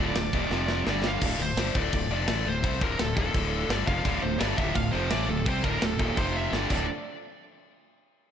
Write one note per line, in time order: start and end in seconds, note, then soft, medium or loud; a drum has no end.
0.00 0.14 D1 medium
0.00 0.15 D2 medium
0.00 0.15 A2 medium
0.00 0.15 D3 loud
0.00 0.47 D3 medium
0.00 0.83 F3 medium
0.00 0.48 A3 medium
0.00 0.83 F4 medium
0.00 0.48 A4 medium
0.00 0.81 D5 medium
0.14 0.31 D1 medium
0.14 0.30 D2 medium
0.14 0.30 A2 medium
0.14 snare loud
0.14 crash medium
0.33 0.50 D#1 loud
0.33 0.50 D#2 loud
0.33 0.51 A#2 loud
0.33 0.51 D#3 loud
0.33 kick loud
0.48 0.83 F1 medium
0.48 0.85 F2 loud
0.48 0.86 C3 medium
0.48 0.86 F3 loud
0.48 0.84 C4 medium
0.48 snare medium
0.68 snare medium
0.85 1.19 G1 medium
0.85 1.21 G2 medium
0.85 1.21 D3 medium
0.85 1.21 G3 medium
0.85 1.21 G3 loud
0.85 1.21 D4 medium
0.85 1.21 G4 medium
0.85 snare medium
0.90 1.06 D5 medium
1.04 1.39 F5 loud
1.04 snare loud
1.21 1.38 D1 medium
1.21 1.38 D2 loud
1.21 1.38 A2 loud
1.21 6.13 D3 medium
1.21 1.39 D3 loud
1.21 6.49 F3 medium
1.21 6.13 A3 medium
1.21 6.48 F4 medium
1.21 6.13 A4 medium
1.21 kick loud
1.21 crash loud
1.21 crash medium
1.39 1.55 D1 medium
1.39 1.53 D2 medium
1.39 1.53 A2 medium
1.39 1.77 C5 loud
1.57 1.73 G1 medium
1.57 1.74 G2 loud
1.57 1.74 D3 loud
1.57 1.75 G3 loud
1.57 snare loud
1.57 crash medium
1.75 1.91 D1 loud
1.75 1.92 D2 medium
1.75 1.92 A2 loud
1.75 1.92 D3 loud
1.75 2.11 D5 loud
1.75 kick loud
1.93 2.09 D1 medium
1.93 2.07 D2 medium
1.93 2.07 A2 medium
1.93 kick medium
1.93 crash medium
2.10 2.26 F1 medium
2.10 2.28 F2 medium
2.10 2.28 C3 loud
2.10 2.28 F3 loud
2.10 2.47 D5 loud
2.28 2.44 A1 medium
2.28 2.45 A2 medium
2.28 2.45 E3 medium
2.28 2.46 A3 loud
2.28 snare loud
2.28 crash medium
2.46 2.63 D1 medium
2.46 2.60 D2 medium
2.46 2.60 A2 medium
2.46 2.83 C5 loud
2.63 2.80 C2 medium
2.63 2.80 C3 loud
2.63 2.80 G3 loud
2.63 2.81 C4 loud
2.63 kick loud
2.63 crash medium
2.81 2.98 D1 medium
2.81 2.98 D2 medium
2.81 2.98 A2 loud
2.81 2.98 D3 loud
2.81 2.99 A#4 medium
2.81 kick loud
2.99 3.16 D1 medium
2.99 3.13 D2 medium
2.99 3.13 A2 medium
2.99 3.15 A4 medium
2.99 snare loud
2.99 crash medium
3.16 3.33 D#1 loud
3.16 3.33 D#2 medium
3.16 3.34 A#2 loud
3.16 3.34 D#3 loud
3.16 3.71 A4 medium
3.16 kick loud
3.34 3.67 D1 loud
3.34 3.68 D2 medium
3.34 3.69 A2 loud
3.34 3.68 D3 loud
3.34 kick loud
3.34 crash medium
3.69 3.85 G1 medium
3.69 3.86 G2 loud
3.69 3.86 D3 loud
3.69 3.87 G3 loud
3.69 3.86 D5 loud
3.69 snare loud
3.69 crash medium
3.87 4.04 F1 loud
3.87 4.04 F2 medium
3.87 4.04 C3 loud
3.87 4.04 F3 loud
3.87 4.22 F5 loud
3.87 kick loud
4.04 4.21 D1 medium
4.04 4.20 D2 loud
4.04 4.21 A2 loud
4.04 4.22 D3 loud
4.04 kick loud
4.04 crash medium
4.22 4.39 D1 medium
4.22 4.36 D2 medium
4.22 4.36 A2 medium
4.22 4.40 C5 medium
4.39 4.57 G1 medium
4.39 4.56 G2 loud
4.39 4.56 D3 loud
4.39 4.57 G3 loud
4.39 4.58 D5 loud
4.39 snare loud
4.39 crash medium
4.57 4.74 D1 medium
4.57 4.74 D2 loud
4.57 4.74 A2 loud
4.57 4.75 D3 loud
4.57 4.75 E5 loud
4.57 kick loud
4.75 4.92 D1 medium
4.75 4.89 D2 medium
4.75 4.90 A2 medium
4.75 4.93 F5 loud
4.75 kick loud
4.75 crash medium
4.92 5.10 F1 loud
4.92 5.09 F2 medium
4.92 5.10 C3 loud
4.92 5.10 F3 loud
4.92 5.10 C5 medium
5.10 5.28 A1 loud
5.10 5.26 A2 medium
5.10 5.27 E3 loud
5.10 5.28 A3 loud
5.10 5.29 D5 loud
5.10 snare loud
5.10 crash medium
5.28 5.45 D1 medium
5.28 5.42 D2 medium
5.28 5.42 A2 medium
5.28 5.45 A4 medium
5.45 5.63 C2 loud
5.45 5.62 C3 loud
5.45 5.63 G3 loud
5.45 5.63 C4 loud
5.45 5.64 C5 loud
5.45 kick loud
5.45 crash medium
5.63 5.80 D1 loud
5.63 5.80 D2 loud
5.63 5.81 A2 loud
5.63 5.81 D3 loud
5.63 5.82 A#4 medium
5.63 kick loud
5.82 5.98 D1 medium
5.82 5.96 D2 medium
5.82 5.96 A2 medium
5.82 5.99 A4 medium
5.82 snare loud
5.82 crash medium
5.99 6.16 D#1 loud
5.99 6.16 D#2 loud
5.99 6.17 A#2 loud
5.99 6.17 D#3 loud
5.99 6.18 A4 medium
5.99 kick loud
6.16 6.50 F1 medium
6.16 6.52 F2 medium
6.16 6.52 C3 loud
6.16 6.52 F3 loud
6.16 6.51 C4 medium
6.16 6.35 C5 medium
6.16 kick loud
6.16 crash medium
6.36 6.52 E5 medium
6.52 6.69 G1 loud
6.52 6.70 G2 loud
6.52 6.70 D3 medium
6.52 6.70 G3 medium
6.52 6.71 G3 medium
6.52 6.69 D4 medium
6.52 6.70 G4 medium
6.52 6.70 D5 medium
6.52 snare medium
6.70 6.87 D1 loud
6.70 6.84 D2 loud
6.70 6.85 A2 loud
6.70 6.85 D3 loud
6.70 6.87 F3 medium
6.70 6.87 A3 medium
6.70 6.87 D4 medium
6.70 6.87 A4 medium
6.70 6.87 D5 medium
6.70 kick loud
6.70 crash loud